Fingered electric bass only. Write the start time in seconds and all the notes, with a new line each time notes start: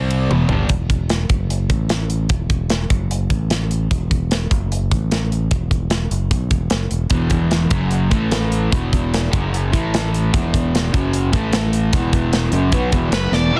Already playing: C2
0.29 E1
0.49 G1
0.69 E1
1.30 F#1
1.70 A1
2.90 F#1
3.30 A1
4.51 F#1
4.92 A1
6.11 F#1
6.31 B1
6.51 E1
6.72 F#1
6.92 E1
7.71 F#1
8.11 A1
8.72 E1
9.33 F#1
9.73 A1
10.34 E1
11.33 A1
12.52 F#1
12.73 B1
12.93 E1
13.12 F#1
13.32 E1